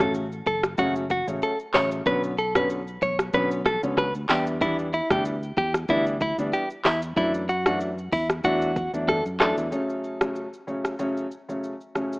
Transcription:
0.00 fingered electric bass A1, grand piano C#3 F#3 A3 C#4, clean electric guitar A4, kick, cross-stick, mid tom, shaker
0.14 shaker
0.32 shaker
0.46 fingered electric bass F#1, clean electric guitar A4, kick, shaker
0.63 cross-stick, shaker
0.78 fingered electric bass F#1, grand piano C#3 F#3 A3 C#4, clean electric guitar F#4, kick, shaker
0.96 shaker
1.10 clean electric guitar F#4, kick, shaker
1.27 fingered electric bass A1, grand piano C#3 F#3 A3 C#4, shaker
1.42 clean electric guitar A4, shaker
1.59 shaker
1.74 fingered electric bass A1, grand piano C#3 F#3 A3 C#4, clean electric guitar C#5, cross-stick, clap, open hi-hat, shaker
1.91 shaker
2.06 fingered electric bass B1, grand piano D3 F#3 B3 C#4, clean electric guitar B4, kick, shaker
2.24 shaker
2.38 clean electric guitar A4, shaker
2.55 grand piano D3 F#3 B3 C#4, clean electric guitar B4, cross-stick, mid tom, shaker
2.70 shaker
2.87 shaker
3.02 fingered electric bass B1, clean electric guitar C#5, kick, shaker
3.19 cross-stick, shaker
3.33 fingered electric bass B1, grand piano D3 F#3 B3 C#4, clean electric guitar B4, kick, shaker
3.51 shaker
3.65 clean electric guitar A4, kick, cross-stick, shaker
3.83 fingered electric bass C#2, grand piano D3 F#3 B3 C#4, shaker
3.97 clean electric guitar B4, kick, cross-stick, shaker
4.15 fingered electric bass D2, shaker
4.29 fingered electric bass E2, grand piano E3 G3 B3 D4, clean electric guitar G4, cross-stick, clap, open hi-hat, shaker
4.47 shaker
4.61 grand piano E3 G3 B3 D4, clean electric guitar E4, kick, shaker
4.79 shaker
4.93 clean electric guitar E4, shaker
5.10 fingered electric bass D2, grand piano E3 G3 B3 D4, clean electric guitar G4, kick, cross-stick, mid tom, shaker
5.25 shaker
5.43 shaker
5.57 fingered electric bass E2, clean electric guitar G4, kick, shaker
5.74 cross-stick, shaker
5.88 fingered electric bass D2, grand piano E3 G3 B3 D4, clean electric guitar E4, kick, shaker
6.06 shaker
6.21 clean electric guitar E4, kick, shaker
6.38 fingered electric bass D2, grand piano E3 G3 B3 D4, shaker
6.53 clean electric guitar G4, shaker
6.70 shaker
6.85 fingered electric bass E2, clean electric guitar E4, cross-stick, clap, open hi-hat, shaker
7.02 shaker
7.16 fingered electric bass F#2, grand piano E3 F#3 A3 D4, clean electric guitar E4, kick, shaker
7.34 shaker
7.49 clean electric guitar F#4, shaker
7.66 grand piano E3 F#3 A3 D4, clean electric guitar F#4, cross-stick, mid tom, shaker
7.80 shaker
7.98 shaker
8.12 fingered electric bass E2, clean electric guitar E4, kick, open hi-hat, shaker
8.30 cross-stick, shaker
8.44 fingered electric bass E2, grand piano E3 F#3 A3 D4, clean electric guitar F#4, kick, shaker
8.62 shaker
8.76 kick, shaker
8.93 fingered electric bass E2, grand piano E3 F#3 A3 D4, shaker
9.08 clean electric guitar A4, kick, cross-stick, mid tom, shaker
9.26 fingered electric bass F#2, shaker
9.40 grand piano E3 F#3 A3 D4, clean electric guitar A4, cross-stick, clap, shaker
9.58 fingered electric bass E2, shaker
9.71 grand piano C#3 F#3 A3 C#4, shaker
9.89 shaker
10.04 shaker
10.21 grand piano C#3 F#3 A3 C#4, cross-stick, shaker
10.36 shaker
10.53 shaker
10.67 grand piano C#3 F#3 A3 C#4, shaker
10.85 cross-stick, shaker
10.99 grand piano C#3 F#3 A3 C#4, shaker
11.17 shaker
11.31 shaker
11.49 grand piano C#3 F#3 A3 C#4, shaker
11.64 shaker
11.81 shaker
11.95 grand piano C#3 F#3 A3 C#4, cross-stick, shaker
12.13 shaker

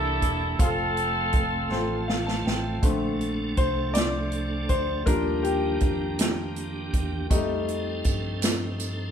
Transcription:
Already playing: fingered electric bass C2, upright piano C3 A#3 E4 A4 D5, tonewheel organ E3 A#3 D4 A4, horn section D4 E4 A4
0.22 fingered electric bass E1, kick, closed hi-hat
0.59 fingered electric bass F1, tonewheel organ F3 A3 C4 G4, upright piano C4 F4 A4 F5, horn section C4 F4 A4, kick, closed hi-hat
0.66 tonewheel organ A4
0.97 closed hi-hat
1.33 kick, closed hi-hat
1.71 fingered electric bass A1, upright piano C4 F4 A4 C5, snare
2.08 upright piano F5, snare
2.26 upright piano A5, snare
2.45 fingered electric bass A1, upright piano G5, snare
2.82 fingered electric bass A#1, upright piano D3 A3 C4, tonewheel organ F3 A3 D4 A4, kick, closed hi-hat
3.21 closed hi-hat
3.57 fingered electric bass C2, upright piano C5, kick, closed hi-hat
3.94 upright piano D5, snare, closed hi-hat
4.32 closed hi-hat
4.69 fingered electric bass D2, upright piano C5, kick, closed hi-hat
5.05 fingered electric bass D#2, tonewheel organ D#3 A#3 D4 F4, upright piano F3 G3 D4 A#4, kick, closed hi-hat
5.14 tonewheel organ G4
5.43 upright piano G4, closed hi-hat
5.80 fingered electric bass F2, kick, closed hi-hat
6.19 snare, closed hi-hat
6.56 closed hi-hat
6.93 fingered electric bass E2, kick, closed hi-hat
7.30 fingered electric bass F2, tonewheel organ F3 C4 D#4 G4, upright piano G3 A3 D#4, kick, closed hi-hat, tambourine
7.37 tonewheel organ A4
7.68 closed hi-hat
8.04 fingered electric bass G2, kick, closed hi-hat, tambourine
8.42 snare, closed hi-hat, tambourine
8.79 closed hi-hat, tambourine

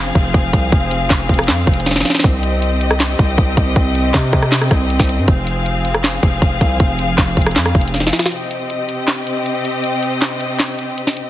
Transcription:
Already playing: 808-style bass F1, string section F3 C4 G#4 F5
0.15 808-style bass F1, kick, closed hi-hat
0.34 808-style bass F1, kick, closed hi-hat
0.53 808-style bass C2, kick, closed hi-hat
0.72 808-style bass F1, kick, closed hi-hat
0.91 closed hi-hat
1.10 808-style bass F1, kick, snare, clap, closed hi-hat
1.29 808-style bass F1, kick, closed hi-hat
1.34 closed hi-hat
1.39 cross-stick, closed hi-hat
1.44 closed hi-hat
1.48 808-style bass F2, snare, clap, closed hi-hat
1.67 808-style bass F1, kick, closed hi-hat
1.74 closed hi-hat
1.80 closed hi-hat
1.86 snare, closed hi-hat
1.91 snare
1.96 snare
2.00 snare
2.05 snare, open hi-hat
2.10 snare
2.15 snare
2.19 snare
2.24 808-style bass C2, string section C3 G4 D#5, kick, closed hi-hat
2.43 closed hi-hat
2.62 closed hi-hat
2.81 closed hi-hat
2.91 cross-stick
3.00 snare, clap, closed hi-hat
3.19 808-style bass C2, kick, closed hi-hat
3.38 808-style bass C2, kick, closed hi-hat
3.57 808-style bass C2, kick, closed hi-hat
3.76 808-style bass C2, kick, closed hi-hat
3.95 closed hi-hat
4.14 808-style bass C3, kick, snare, clap, closed hi-hat
4.33 808-style bass C3, kick, cross-stick, closed hi-hat
4.42 cross-stick
4.52 snare, clap, closed hi-hat
4.61 cross-stick
4.71 808-style bass C2, kick, cross-stick, closed hi-hat
4.90 closed hi-hat
4.99 808-style bass C2, kick, snare
5.09 closed hi-hat
5.18 808-style bass G2
5.28 808-style bass F1, string section F3 G#4 F5, kick, closed hi-hat
5.47 closed hi-hat
5.66 closed hi-hat
5.85 closed hi-hat
5.94 cross-stick
6.04 snare, clap, closed hi-hat
6.23 808-style bass F1, kick, closed hi-hat
6.42 808-style bass F1, kick, closed hi-hat
6.61 808-style bass C2, kick, closed hi-hat
6.80 808-style bass F1, kick, closed hi-hat
6.99 closed hi-hat
7.18 808-style bass F1, kick, snare, clap, closed hi-hat
7.37 808-style bass F1, kick, closed hi-hat
7.42 closed hi-hat
7.46 cross-stick, closed hi-hat
7.51 closed hi-hat
7.56 808-style bass F2, snare, clap, closed hi-hat
7.66 cross-stick
7.75 808-style bass F1, kick, closed hi-hat
7.81 closed hi-hat
7.88 closed hi-hat
7.94 snare, closed hi-hat
8.00 snare
8.07 snare
8.13 snare, open hi-hat
8.19 snare
8.26 snare
8.32 string section C3 C4 G4 D#5, closed hi-hat
8.51 closed hi-hat
8.70 closed hi-hat
8.89 closed hi-hat
9.07 snare, clap, closed hi-hat
9.27 closed hi-hat
9.46 closed hi-hat
9.65 closed hi-hat
9.84 closed hi-hat
10.03 closed hi-hat
10.22 snare, clap, closed hi-hat
10.41 closed hi-hat
10.59 snare, clap, closed hi-hat
10.79 closed hi-hat
10.98 closed hi-hat
11.07 snare
11.17 closed hi-hat

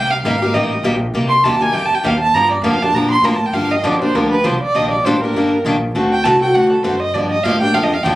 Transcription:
Already playing: upright bass C2, steel-string acoustic guitar C3 G3 A#3 D#4 G4, violin G5
0.11 violin F5
0.24 upright bass G#1, steel-string acoustic guitar C3 G3 A#3 D#4 G4, violin F5
0.42 steel-string acoustic guitar A#3 D#4 G4
0.53 upright bass A1, steel-string acoustic guitar C3 G3 A#3 D#4 G4, violin D#5
0.83 upright bass A#1, steel-string acoustic guitar C3 G3 A#3 D#4 G4
1.14 upright bass C2, steel-string acoustic guitar C3 G3 A#3 D#4 G4
1.29 violin C6
1.44 upright bass D#2, steel-string acoustic guitar C3 G3 A#3 D#4 G4, violin A5
1.60 steel-string acoustic guitar A#3 D#4 G4, violin G#5
1.73 upright bass F2, steel-string acoustic guitar C3 G3 A#3 D#4 G4, violin G5
1.85 violin A5
1.91 muted upright bass stroke
1.95 violin G5
2.04 upright bass D#2, steel-string acoustic guitar C3 G3 A#3 D#4 G4, violin F5
2.20 violin A5
2.33 upright bass G2, steel-string acoustic guitar D3 F3 A#3 D4 G4, violin A#5
2.52 violin D5
2.62 upright bass F2, steel-string acoustic guitar D3 F3 A#3 D4 G4, violin F5
2.82 steel-string acoustic guitar A#3 D4 G4, violin A5
2.93 upright bass A#2, steel-string acoustic guitar D3 F3 A#3 D4 G4, violin A#5
3.11 violin C6
3.22 upright bass A2, steel-string acoustic guitar D3 F3 A#3 D4 G4, violin A#5
3.36 violin A5
3.46 violin G5
3.52 upright bass G2, steel-string acoustic guitar D3 F3 A#3 D4 G4, violin F5
3.72 violin D#5
3.82 upright bass F2, steel-string acoustic guitar D3 F3 A#3 D4 G4, violin D5
4.02 steel-string acoustic guitar A#3 D4 G4, violin C5
4.14 upright bass D2, steel-string acoustic guitar D3 F3 A#3 D4 G4, violin A#4
4.32 violin B4
4.44 upright bass C2, steel-string acoustic guitar D3 F3 A#3 D4 G4, violin C5
4.63 violin D5, muted upright bass stroke
4.75 upright bass A#1, steel-string acoustic guitar D#3 G3 A#3 D4 G4, violin D#5
4.91 violin D5
5.04 upright bass A1, steel-string acoustic guitar D#3 G3 A#3 D4 G4, violin C5
5.21 steel-string acoustic guitar D4 G4, violin A#4
5.25 steel-string acoustic guitar A#3
5.34 upright bass G1, steel-string acoustic guitar D#3 G3 A#3 D4 G4
5.65 upright bass A#1, steel-string acoustic guitar D#3 G3 A#3 D4 G4
5.95 upright bass D2, steel-string acoustic guitar D3 A3 C4 F#4 A4
6.12 violin G5
6.24 upright bass C2, steel-string acoustic guitar D3 A3 C4 F#4 A4, violin A5
6.41 steel-string acoustic guitar C4 F#4 A4, violin G5
6.53 upright bass D2, steel-string acoustic guitar D3 A3 C4 F#4 A4, violin F#5
6.73 violin A4
6.83 upright bass F#2, steel-string acoustic guitar D3 A3 C4 F#4 A4, violin C5
7.00 violin D#5
7.13 upright bass G2, steel-string acoustic guitar D3 F3 A#3 D4 G4, violin D5
7.32 violin D#5
7.43 upright bass A2, steel-string acoustic guitar D3 F3 A#3 D4 G4, violin F5
7.61 steel-string acoustic guitar A#3 D4 G4, violin G5
7.74 upright bass F2, steel-string acoustic guitar D3 F3 A#3 D4 G4, violin F5
7.83 violin D#5
7.94 violin F5
8.03 upright bass D#2, steel-string acoustic guitar D3 F3 A#3 D4 G4, violin G5

